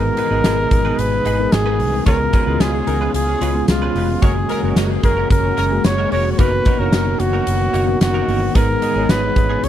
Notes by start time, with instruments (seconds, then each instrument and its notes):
Already playing: tine electric piano G#2 G#3 B3 D#4 G#4 B4, analog synth pad B2 D#3 G#3 G#4, flugelhorn A#4
0.04 muted clean electric guitar stroke
0.17 clean electric guitar B3 D#4 G#4 B4, closed hi-hat
0.30 fingered electric bass G#1, tine electric piano G#3 B3 D#4 G#4 D#5, clean electric guitar B3 D#4 G#4 B4
0.44 fingered electric bass G#1, clean electric guitar B3 D#4 G#4 B4, snare, closed hi-hat, tambourine
0.71 fingered electric bass G#1, muted clean electric guitar stroke, kick, closed hi-hat
0.85 clean electric guitar B3 D#4 G#4 B4
0.98 fingered electric bass G#1, flugelhorn B4, closed hi-hat
1.12 muted clean electric guitar stroke
1.25 fingered electric bass G#1, clean electric guitar B3 D#4 G#4 B4, closed hi-hat
1.38 tine electric piano G#3 B3 D#4 G#4 A#4, muted clean electric guitar stroke
1.52 fingered electric bass G#1, flugelhorn G#4, muted clean electric guitar stroke, snare, closed hi-hat, tambourine
1.66 clean electric guitar B3 D#4 G#4 B4
1.79 fingered electric bass C2, muted clean electric guitar stroke, open hi-hat
1.93 muted clean electric guitar stroke
2.06 fingered electric bass C#2, analog synth pad C#3 F4, tine electric piano C#3 G#3 B3 C#4 F4 G#4, clean electric guitar G#3 C#4 F4 B4, horn section F4 G#4 C#5, flugelhorn A#4, kick, closed hi-hat
2.20 muted clean electric guitar stroke
2.33 clean electric guitar G#3 C#4 F4 B4, horn section D#4 F#4 A#4, kick, closed hi-hat
2.46 fingered electric bass C#2, tine electric piano G#3 B3 C#4 E4 G#4, clean electric guitar G#3 C#4 F4 B4
2.54 tine electric piano F4
2.60 fingered electric bass C#2, clean electric guitar G#3 C#4 F4 B4, flugelhorn G#4, snare, closed hi-hat, tambourine
2.74 horn section C#4 F4 G#4, muted clean electric guitar stroke
2.87 fingered electric bass C#2, horn section D#4 F#4 A#4, muted clean electric guitar stroke, closed hi-hat
3.01 clean electric guitar G#3 C#4 F4 B4
3.14 fingered electric bass C#2, flugelhorn G#4, closed hi-hat
3.28 horn section C#4 F4 G#4, muted clean electric guitar stroke
3.41 fingered electric bass C#2, clean electric guitar G#3 C#4 F4 B4, horn section C#4 F4 G#4, closed hi-hat
3.54 tine electric piano G#3 B3 C#4 F4 G#4, muted clean electric guitar stroke
3.68 fingered electric bass C#2, flugelhorn F4, muted clean electric guitar stroke, snare, closed hi-hat, tambourine
3.82 clean electric guitar G#3 C#4 F4 B4
3.95 fingered electric bass F1, clean electric guitar G#3 C#4 F4 B4, open hi-hat
4.09 muted clean electric guitar stroke
4.22 fingered electric bass F#1, tine electric piano G#3 A#3 C#4 F#4 G#4, analog synth pad G#3 C#4 F#4, clean electric guitar G#3 C#4 F#4 A#4, horn section G#4 A#4 C#5, flugelhorn G#4, kick, closed hi-hat
4.37 muted clean electric guitar stroke
4.49 clean electric guitar G#3 C#4 F#4 A#4, horn section C#4 F#4 A#4, closed hi-hat
4.62 fingered electric bass F#1, tine electric piano G#3 A#3 C#4 F#4 A#4, clean electric guitar G#3 C#4 F#4 A#4
4.76 fingered electric bass F#1, clean electric guitar G#3 C#4 F#4 A#4, snare, closed hi-hat, tambourine
4.90 horn section A#3 C#4 G#4, muted clean electric guitar stroke
5.03 fingered electric bass F#1, horn section A#3 C#4 G#4, flugelhorn A#4, muted clean electric guitar stroke, kick, closed hi-hat
5.17 clean electric guitar G#3 C#4 F#4 A#4
5.30 fingered electric bass F#1, flugelhorn A#4, kick, closed hi-hat
5.44 horn section C#4 F#4 A#4, muted clean electric guitar stroke
5.57 fingered electric bass F#1, clean electric guitar G#3 C#4 F#4 A#4, horn section C#4 F#4 A#4, closed hi-hat
5.71 tine electric piano G#3 A#3 C#4 F#4 G#4, muted clean electric guitar stroke
5.84 fingered electric bass F#1, flugelhorn C#5, muted clean electric guitar stroke, snare, closed hi-hat, tambourine
5.98 clean electric guitar G#3 C#4 F#4 A#4
6.12 fingered electric bass F1, clean electric guitar G#3 C#4 F#4 A#4, flugelhorn C#5, open hi-hat
6.25 muted clean electric guitar stroke
6.32 flugelhorn C#5
6.38 fingered electric bass F#1, analog synth pad B2 D#3, tine electric piano A#3 B3 D#4 F#4 A#4, clean electric guitar A#3 D#4 F#4 A#4, flugelhorn B4, kick, closed hi-hat
6.52 muted clean electric guitar stroke
6.65 clean electric guitar A#3 D#4 F#4 A#4, kick, closed hi-hat
6.79 fingered electric bass F#1, tine electric piano A#3 B3 D4 F#4 C#5, clean electric guitar A#3 D#4 F#4 A#4, flugelhorn A#4
6.86 tine electric piano D#4
6.92 fingered electric bass F#1, clean electric guitar A#3 D#4 F#4 A#4, snare, closed hi-hat, tambourine
7.06 muted clean electric guitar stroke
7.20 fingered electric bass F#1, flugelhorn F#4, muted clean electric guitar stroke, closed hi-hat
7.33 clean electric guitar A#3 D#4 F#4 A#4
7.47 fingered electric bass F#1, closed hi-hat
7.60 muted clean electric guitar stroke
7.73 fingered electric bass F#1, clean electric guitar A#3 D#4 F#4 A#4, closed hi-hat
7.87 tine electric piano A#3 B3 D#4 F#4 A#4, muted clean electric guitar stroke
8.01 fingered electric bass F#1, flugelhorn F#4, muted clean electric guitar stroke, snare, closed hi-hat, tambourine
8.14 clean electric guitar A#3 D#4 F#4 A#4
8.28 fingered electric bass G1, clean electric guitar A#3 D#4 F#4 A#4, open hi-hat
8.42 muted clean electric guitar stroke
8.54 fingered electric bass G#1, tine electric piano G#2 G#3 B3 D#4 G#4 B4, clean electric guitar G#3 B3 D#4 G#4, analog synth pad G#3 B3 G#4, flugelhorn A#4, kick, closed hi-hat
8.69 muted clean electric guitar stroke
8.82 clean electric guitar G#3 B3 D#4 G#4, closed hi-hat
8.95 fingered electric bass G#1, tine electric piano G#3 B3 D#4 G#4 C#5, clean electric guitar G#3 B3 D#4 G#4
9.09 fingered electric bass G#1, clean electric guitar G#3 B3 D#4 G#4, flugelhorn B4, snare, closed hi-hat, tambourine
9.23 muted clean electric guitar stroke
9.36 fingered electric bass G#1, muted clean electric guitar stroke, kick, closed hi-hat
9.49 clean electric guitar G#3 B3 D#4 G#4
9.63 fingered electric bass C#2, analog synth pad C#3 F#3 F#4, tine electric piano C#3 G#3 C#4 F#4 G#4 C#5, flugelhorn C#5, closed hi-hat